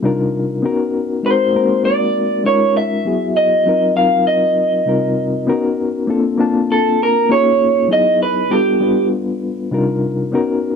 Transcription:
0.03 reed electric piano C3 G3 D4 D#4 F4 A#4
0.62 reed electric piano B3 C#4 D#4 F#4 A#4
1.23 reed electric piano G#3 C4 D#4 F#4 A#4, clean electric guitar C5
1.53 reed electric piano G#3 A#3 D#4 F#4 A#4
1.60 reed electric piano C4
1.85 clean electric guitar D5
2.44 reed electric piano G#3 C#4 D#4 F4 A#4, clean electric guitar C#5
2.77 clean electric guitar E5
3.05 reed electric piano F#3 B3 E4 F#4 G#4
3.37 clean electric guitar D#5
3.66 reed electric piano F#3 C4 D#4 F4 A#4
3.95 reed electric piano F#3 C4 D#4 F4 A#4, clean electric guitar F5
4.27 clean electric guitar D#5
4.86 reed electric piano C3 G3 C4 D#4 F4 A#4
5.47 reed electric piano B3 C#4 D#4 F#4 A#4
6.07 reed electric piano A#3 C4 D4 F4 A4
6.38 reed electric piano A#3 C4 D4 F4 A5
6.72 clean electric guitar A4
7.03 clean electric guitar A#4
7.29 reed electric piano A#3 C#4 D#4 F4 G#4, clean electric guitar C#5
7.88 reed electric piano F#3 B3 D#4 E4 G#4
7.93 clean electric guitar D#5
8.22 clean electric guitar B4
8.50 reed electric piano G3 B3 D4 F4 A4, clean electric guitar G4
8.80 reed electric piano G3 B3 D4 F4 B4
9.71 reed electric piano C3 G3 D4 D#4 F4 A#4
10.32 reed electric piano B3 C#4 D#4 F#4 A#4

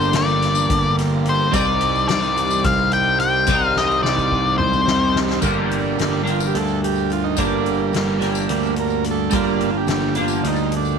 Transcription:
Already playing: picked electric bass G1, clean electric guitar G2 D3 G3 A#3 D4, transistor combo organ G3 A#3 D4 A#4, lead electric guitar C5
0.02 tambourine
0.13 picked electric bass G1, lead electric guitar D5, snare, closed hi-hat, tambourine
0.28 tambourine
0.42 snare, closed hi-hat, tambourine
0.55 tambourine
0.70 picked electric bass G1, kick, closed hi-hat
0.98 snare, closed hi-hat
1.25 lead electric guitar C5, closed hi-hat
1.51 picked electric bass C2, clean electric guitar C3 G3 C4 D#4, transistor combo organ G3 C4, lead electric guitar D5, kick, closed hi-hat, tambourine
1.55 transistor combo organ D#4 C5
1.81 closed hi-hat
1.95 tambourine
2.08 picked electric bass C2, lead electric guitar D5, snare, closed hi-hat, tambourine
2.23 tambourine
2.36 closed hi-hat, tambourine
2.51 tambourine
2.64 picked electric bass C2, lead electric guitar F5, kick, closed hi-hat
2.91 lead electric guitar G5, closed hi-hat
3.19 lead electric guitar G5, closed hi-hat
3.46 picked electric bass C2, clean electric guitar C3 G3 C4, kick, closed hi-hat, tambourine
3.51 clean electric guitar D#4
3.65 lead electric guitar F5
3.76 lead electric guitar D#5, snare
3.91 tambourine
4.03 picked electric bass C2, lead electric guitar D5, snare
4.18 kick, tambourine
4.32 kick
4.58 picked electric bass C2, lead electric guitar C5, mid tom
4.73 mid tom, tambourine
4.87 snare
5.16 snare
5.30 snare
5.41 picked electric bass G1, clean electric guitar G2 D3 G3 A#3 D4, transistor combo organ G3 A#3 D4, kick, crash, tambourine
5.71 closed hi-hat
5.99 picked electric bass G1, snare, closed hi-hat, tambourine
6.23 clean electric guitar G2 D3 G3 A#3 D4, closed hi-hat, tambourine
6.30 transistor combo organ F4
6.40 tambourine
6.47 transistor combo organ G4
6.55 picked electric bass D2, transistor combo organ A4, closed hi-hat
6.68 tambourine
6.84 transistor combo organ G4, closed hi-hat
6.96 tambourine
7.10 transistor combo organ F4, closed hi-hat, tambourine
7.24 transistor combo organ D#4
7.36 picked electric bass G1, clean electric guitar G2 D3 G3 A#3 D4, transistor combo organ G3 A#3 D4, kick, closed hi-hat, tambourine
7.66 closed hi-hat
7.77 transistor combo organ A#3
7.93 picked electric bass G1, snare, closed hi-hat, tambourine
8.19 clean electric guitar G2 D3 G3 A#3 D4, closed hi-hat, tambourine
8.23 snare
8.35 tambourine
8.49 picked electric bass D2, transistor combo organ G3 A#3 D4, closed hi-hat
8.63 tambourine
8.76 transistor combo organ A#4, closed hi-hat
8.90 tambourine
9.04 closed hi-hat, tambourine
9.11 transistor combo organ A4
9.30 picked electric bass G1, clean electric guitar G2 D3 G3 A#3, transistor combo organ G3, kick, closed hi-hat, tambourine
9.34 transistor combo organ A#3 D4 F4, clean electric guitar D4
9.60 closed hi-hat
9.77 transistor combo organ G4
9.87 picked electric bass G1, snare, closed hi-hat, tambourine
10.15 clean electric guitar D3 G3 A#3 D4, closed hi-hat, tambourine
10.19 clean electric guitar G2, transistor combo organ F4
10.28 tambourine
10.44 picked electric bass D2, transistor combo organ D#4, closed hi-hat
10.56 tambourine
10.72 closed hi-hat
10.77 transistor combo organ D4
10.85 tambourine

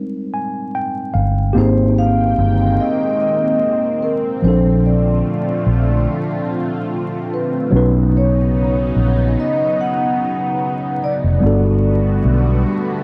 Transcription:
Already playing: tine electric piano G3 G#3 C4 D#4 A#4
0.34 tine electric piano G#5
0.75 tine electric piano G5
1.14 fingered electric bass G1, tine electric piano F5
1.53 fingered electric bass G#1, analog synth pad D#3 G#3 A#3 C4 G5, tine electric piano A#3 C4 G4
1.57 tine electric piano D#4 G#4, vibraphone C5
1.98 vibraphone F5
2.38 fingered electric bass G1
2.80 vibraphone D#5
3.21 vibraphone D#5
4.03 vibraphone A#4
4.42 fingered electric bass A#1, tine electric piano A#2 F3 C4, analog synth pad D3 A3 F4, vibraphone C5
4.47 tine electric piano D4 A4
4.86 vibraphone D5
5.67 fingered electric bass A#1
7.34 vibraphone B4
7.71 fingered electric bass B1, analog synth pad C#3 F#3 B3 D#4, tine electric piano F#3 B3 C#4
7.76 tine electric piano D#4 B4
8.17 vibraphone C#5
8.96 fingered electric bass A#1
9.40 vibraphone D#5
9.81 vibraphone F#5
11.04 vibraphone D5
11.24 fingered electric bass F1
11.40 fingered electric bass G1, analog synth pad D3 G3 A3 B3 F#4, tine electric piano G3 B3 D4
11.45 tine electric piano F#4 A4
12.25 fingered electric bass B1

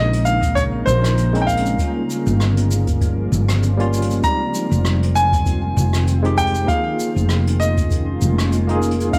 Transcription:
Already playing: fretless electric bass A#1, ambient pad C#3 G#3 A#3 D#4 A#4, tine electric piano G#3 C4 C#4 D#4, grand piano D#5
0.13 closed hi-hat
0.25 grand piano F5, closed hi-hat, shaker
0.42 kick, closed hi-hat, shaker
0.55 grand piano C#5, kick, closed hi-hat, shaker
0.86 fretless electric bass A#1, grand piano C5, shaker
1.04 cross-stick, closed hi-hat, shaker
1.18 closed hi-hat, shaker
1.33 tine electric piano G#3 C4 C#4 D#4, closed hi-hat
1.42 grand piano G5
1.47 grand piano F5, kick, closed hi-hat, shaker
1.57 closed hi-hat
1.65 closed hi-hat, shaker
1.75 ambient pad F3 G3 A#3 F4, tine electric piano G3 A#3, kick, closed hi-hat, shaker
1.80 tine electric piano C#4 F4
2.10 closed hi-hat, shaker
2.26 fretless electric bass G1, shaker
2.40 cross-stick, shaker
2.57 closed hi-hat
2.71 closed hi-hat, shaker
2.87 kick, closed hi-hat, shaker
3.01 kick, closed hi-hat, shaker
3.32 fretless electric bass G1, shaker
3.49 cross-stick, closed hi-hat, shaker
3.63 closed hi-hat, shaker
3.77 tine electric piano G3 A#3 C#4 F4, closed hi-hat
3.93 closed hi-hat, shaker
4.02 closed hi-hat
4.10 closed hi-hat, shaker
4.20 ambient pad D#3, tine electric piano G#3 C4, kick, closed hi-hat, shaker
4.24 tine electric piano G3 D#4, ambient pad C4, grand piano A#5
4.54 closed hi-hat, shaker
4.71 fretless electric bass F1, shaker
4.85 cross-stick, shaker
5.03 closed hi-hat
5.15 grand piano G#5, closed hi-hat, shaker
5.32 kick, closed hi-hat, shaker
5.46 kick, closed hi-hat, shaker
5.77 fretless electric bass F1, shaker
5.93 cross-stick, closed hi-hat, shaker
6.07 closed hi-hat, shaker
6.23 tine electric piano G#3 C4 D#4 G4, closed hi-hat
6.37 grand piano G5, kick, closed hi-hat, shaker
6.46 closed hi-hat
6.54 closed hi-hat, shaker
6.65 tine electric piano A#3 D#4, ambient pad C#4, grand piano F5, kick, closed hi-hat
6.69 ambient pad G#3 A#3 F4, tine electric piano F4 G#4, shaker
6.99 closed hi-hat, shaker
7.16 fretless electric bass F1, shaker
7.29 cross-stick, shaker
7.47 closed hi-hat
7.59 grand piano D#5, closed hi-hat, shaker
7.77 kick, closed hi-hat, shaker
7.91 kick, closed hi-hat, shaker
8.22 fretless electric bass F1, shaker
8.38 cross-stick, closed hi-hat, shaker
8.52 closed hi-hat, shaker
8.67 tine electric piano A#3 D#4 F4 G#4, closed hi-hat
8.82 closed hi-hat, shaker
8.91 closed hi-hat
9.00 closed hi-hat, shaker
9.10 tine electric piano G#3 C4, synth pluck D#4, grand piano F5, kick, closed hi-hat, shaker
9.14 tine electric piano C#4

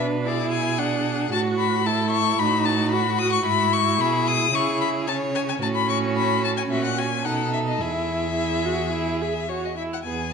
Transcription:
Already playing: cello B2, viola D4, violin B4
0.25 viola E4, violin G#4 D5
0.51 violin G#5
0.78 viola D4, violin F#5
1.32 cello A2, violin F#4 A5, viola F#4
1.59 violin B5
1.86 viola E4, violin A4 A5
2.10 violin C#6
2.38 cello A2, viola D#4, violin F#4 B5
2.65 violin A5
2.92 viola F#4, violin B5
3.19 violin D#6
3.32 violin C#6
3.45 cello G#2, viola E4, violin B5
3.73 violin C#6
3.98 cello B2, violin G#4 B5
4.27 violin D#6
4.53 cello C#3, viola E4, violin G#4 C#6
4.81 violin B5
5.07 viola C#4, violin C#5 A5
5.35 violin G#5
5.49 violin G#5
5.61 cello A2, viola C#4, violin F#4 A5
5.75 violin B5
5.89 violin C#6
6.17 violin B5
6.44 violin A5
6.57 violin G#5
6.70 cello A#2, viola C#4, violin F#4 E5
6.84 violin F#5
6.97 violin F#4 G#5
7.24 cello B2, viola D#4, violin A4 F#5
7.53 violin E5
7.68 violin D#5
7.80 cello E2, viola E4, violin G#4 E5
8.36 viola E4
8.65 viola F#4
8.93 viola E4
9.21 viola G#4, violin E5
9.49 viola F#4, violin C#5
9.65 violin D#5
9.77 viola E4, violin E5
9.93 violin F#5
10.04 cello E2, viola B3, violin G#4 G#5

